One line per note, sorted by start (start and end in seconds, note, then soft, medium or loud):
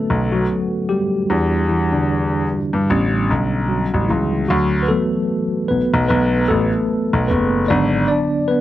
0.00 1.31 D3 medium
0.00 0.34 F#3 medium
0.00 1.30 A3 medium
0.00 1.31 B3 medium
0.00 1.30 C#4 medium
0.00 0.32 F#4 medium
0.00 0.34 A4 medium
0.00 1.31 B4 medium
0.10 0.44 B1 medium
0.32 0.86 F#3 medium
0.32 0.85 F#4 medium
0.89 1.29 G3 medium
0.89 1.71 G4 medium
1.29 2.45 E2 medium
1.29 1.85 G3 soft
1.29 1.85 D4 medium
1.29 1.85 F#4 soft
1.69 1.92 E3 medium
1.69 1.91 E4 medium
1.92 3.09 D3 medium
1.92 3.08 D4 medium
2.50 2.59 G2 soft
2.73 2.87 G2 medium
2.90 3.29 A1 medium
2.90 4.45 G3 medium
2.90 4.46 B3 soft
2.90 4.46 C#4 medium
3.31 3.84 B1 medium
3.69 4.07 F#3 soft
3.69 4.10 F#4 medium
3.94 4.07 A1 medium
4.08 4.44 C#2 medium
4.08 4.47 E3 soft
4.08 4.50 E4 medium
4.48 4.84 D2 loud
4.48 4.82 F#3 medium
4.48 4.84 F#4 medium
4.83 4.89 B4 medium
4.88 5.45 E3 medium
4.88 5.45 F#3 soft
4.88 5.66 A3 medium
4.88 5.46 B3 medium
4.88 5.71 A4 medium
5.68 5.79 B1 soft
5.68 6.07 B3 medium
5.68 6.06 B4 medium
5.94 6.07 B1 medium
6.08 6.44 B1 loud
6.08 6.47 B3 medium
6.08 6.50 B4 medium
6.48 6.69 A1 medium
6.48 7.26 A3 medium
6.48 7.31 A4 medium
7.13 7.27 B1 medium
7.28 7.64 F#1 medium
7.28 7.67 B3 medium
7.28 7.70 B4 medium
7.68 8.04 G#1 loud
7.68 8.61 D3 medium
7.68 8.61 F#3 soft
7.68 8.50 B3 medium
7.68 8.07 D4 medium
7.68 8.07 D5 loud
8.08 8.47 D4 medium
8.08 8.46 D5 medium
8.48 8.61 B3 medium
8.48 8.61 B4 medium